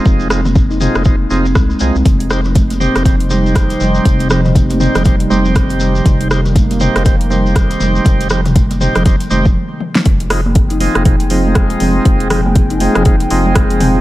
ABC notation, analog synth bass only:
X:1
M:4/4
L:1/16
Q:"Swing 16ths" 1/4=120
K:Fm
V:1 name="Analog synth bass" clef=bass
F,,,6- F,,, F,,,3 F,,,2 C,, z C,, C,, | F,,,6- F,,, F,,,6- F,,, F,,, z | F,,,6- F,,, F,,,3 F,,,6 | F,,,6- F,,, F,,,6- F,,, F,,, z |
F,,,6- F,,, F,,, F,,, z F,,,2 z4 | F,,,6- F,,, F,,,6- F,,, F,,, z | F,,,6- F,,, F,,,3 F,,,6 |]